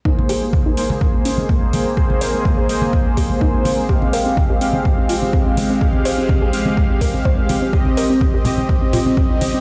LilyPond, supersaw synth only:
\new Staff \with { instrumentName = "Supersaw synth" } { \time 4/4 \key aes \major \tempo 4 = 125 <bes aes' c''>4. <bes aes' c''>2~ <bes aes' c''>8 | <bes aes' c''>4. <bes aes' c''>2~ <bes aes' c''>8 | <aes g' f''>4. <aes g' f''>2~ <aes g' f''>8 | <aes g' f''>4. <aes g' f''>2~ <aes g' f''>8 |
<c' g' ees''>4. <c' g' ees''>2~ <c' g' ees''>8 | }